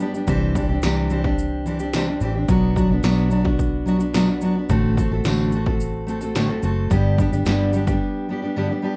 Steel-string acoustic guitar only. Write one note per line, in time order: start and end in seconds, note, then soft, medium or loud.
0.00 0.14 G3 medium
0.00 0.14 B3 medium
0.00 0.14 D4 medium
0.00 0.12 G4 medium
0.14 0.27 G3 soft
0.14 0.28 B3 soft
0.14 0.27 D4 soft
0.14 0.28 G4 soft
0.27 0.55 C3 medium
0.27 0.54 E3 medium
0.27 0.55 C4 medium
0.27 0.56 D4 medium
0.27 0.56 G4 loud
0.55 0.69 E3 medium
0.55 0.70 C4 medium
0.55 0.70 D4 medium
0.55 0.68 G4 medium
0.69 0.83 C4 medium
0.69 0.84 D4 medium
0.69 0.83 G4 medium
0.83 1.11 C3 medium
0.83 1.09 E3 medium
0.83 1.10 C4 medium
0.83 1.11 D4 medium
0.83 1.12 G4 medium
1.10 1.24 E3 medium
1.10 1.25 C4 medium
1.10 1.25 D4 medium
1.10 1.24 G4 medium
1.25 1.65 C4 soft
1.25 1.67 D4 medium
1.25 1.66 G4 medium
1.66 1.79 E3 medium
1.66 1.80 C4 medium
1.66 1.80 D4 medium
1.66 1.79 G4 medium
1.80 1.94 C4 soft
1.80 1.94 D4 soft
1.80 1.93 G4 medium
1.94 2.08 C3 medium
1.94 2.08 E3 medium
1.94 2.08 C4 medium
1.94 2.08 D4 medium
1.94 2.07 G4 medium
2.08 2.21 C4 soft
2.08 2.22 D4 soft
2.08 2.21 G4 medium
2.21 2.35 E3 medium
2.21 2.36 C4 medium
2.21 2.36 D4 medium
2.21 2.33 G4 medium
2.35 2.49 C4 soft
2.35 2.49 D4 soft
2.35 2.49 G4 soft
2.49 2.76 B2 medium
2.49 2.74 F#3 medium
2.49 2.75 B3 medium
2.49 2.76 D4 medium
2.49 2.77 F#4 loud
2.76 2.90 F#3 medium
2.76 2.90 B3 medium
2.76 2.91 D4 medium
2.76 2.89 F#4 medium
2.90 3.03 B3 medium
2.90 3.03 D4 medium
2.90 3.04 F#4 medium
3.03 3.31 B2 medium
3.03 3.29 F#3 medium
3.03 3.30 B3 loud
3.03 3.31 D4 medium
3.03 3.32 F#4 medium
3.30 3.44 F#3 medium
3.30 3.45 B3 medium
3.30 3.45 D4 medium
3.30 3.43 F#4 medium
3.44 3.86 B3 soft
3.44 3.87 D4 medium
3.44 3.86 F#4 medium
3.86 4.00 F#3 medium
3.86 4.01 B3 medium
3.86 3.99 D4 medium
3.86 3.97 F#4 medium
3.99 4.13 B3 soft
3.99 4.14 D4 medium
3.99 4.13 F#4 medium
4.13 4.28 B2 medium
4.13 4.28 F#3 medium
4.13 4.28 B3 loud
4.13 4.28 D4 medium
4.13 4.26 F#4 medium
4.27 4.41 B3 soft
4.27 4.43 D4 medium
4.27 4.42 F#4 medium
4.41 4.55 F#3 medium
4.41 4.56 B3 medium
4.41 4.56 D4 medium
4.41 4.54 F#4 medium
4.55 4.70 B3 soft
4.55 4.70 D4 soft
4.55 4.69 F#4 medium
4.69 4.97 A2 medium
4.69 4.97 D3 medium
4.69 4.96 A3 medium
4.69 4.97 C4 medium
4.69 4.98 F#4 medium
4.69 4.98 A4 medium
4.97 5.11 A3 medium
4.97 5.11 C4 medium
4.97 5.12 F#4 medium
4.97 5.10 A4 medium
5.12 5.25 A3 medium
5.12 5.26 C4 medium
5.12 5.26 F#4 medium
5.12 5.25 A4 medium
5.25 5.53 A2 medium
5.25 5.53 D3 medium
5.25 5.52 A3 medium
5.25 5.53 C4 medium
5.25 5.54 F#4 medium
5.25 5.54 A4 loud
5.53 5.66 A3 medium
5.53 5.67 C4 medium
5.53 5.66 F#4 medium
5.53 5.65 A4 medium
5.66 6.05 A3 soft
5.66 6.07 C4 medium
5.66 6.08 F#4 medium
5.66 6.08 A4 medium
6.07 6.21 A3 medium
6.07 6.22 C4 medium
6.07 6.20 F#4 medium
6.07 6.19 A4 medium
6.21 6.35 A3 soft
6.21 6.35 C4 soft
6.21 6.35 F#4 soft
6.21 6.35 A4 medium
6.35 6.49 A2 medium
6.35 6.49 D3 medium
6.35 6.49 A3 medium
6.35 6.49 C4 medium
6.35 6.48 F#4 medium
6.35 6.47 A4 medium
6.48 6.61 A3 medium
6.48 6.62 C4 soft
6.48 6.63 F#4 soft
6.48 6.63 A4 medium
6.62 6.90 A3 medium
6.62 6.91 C4 medium
6.62 6.91 F#4 medium
6.62 6.92 A4 medium
6.90 7.18 G2 medium
6.90 7.18 D3 medium
6.90 7.17 G3 medium
6.90 7.18 B3 medium
6.90 7.19 D4 medium
6.90 7.19 G4 medium
7.18 7.32 G3 medium
7.18 7.33 B3 medium
7.18 7.32 D4 medium
7.18 7.31 G4 medium
7.32 7.45 G3 soft
7.32 7.45 B3 medium
7.32 7.46 D4 medium
7.32 7.46 G4 medium
7.45 7.73 G2 medium
7.45 7.73 D3 medium
7.45 7.72 G3 medium
7.45 7.73 B3 medium
7.45 7.74 D4 medium
7.45 7.74 G4 medium
7.73 7.87 G3 medium
7.73 7.87 B3 medium
7.73 7.87 D4 medium
7.73 7.86 G4 medium
7.87 8.28 G3 medium
7.87 8.29 B3 medium
7.87 8.29 D4 medium
7.87 8.28 G4 medium
8.29 8.43 G3 medium
8.29 8.43 B3 medium
8.29 8.42 D4 medium
8.29 8.41 G4 medium
8.42 8.56 G3 soft
8.42 8.56 B3 soft
8.42 8.57 D4 soft
8.42 8.56 G4 medium
8.56 8.70 G2 medium
8.56 8.70 D3 medium
8.56 8.70 G3 medium
8.56 8.70 B3 medium
8.56 8.69 D4 medium
8.56 8.68 G4 medium
8.69 8.81 G3 soft
8.69 8.82 B3 medium
8.69 8.83 D4 medium
8.69 8.83 G4 medium
8.82 8.96 G3 medium
8.82 8.96 B3 medium
8.82 8.96 D4 medium
8.82 8.94 G4 medium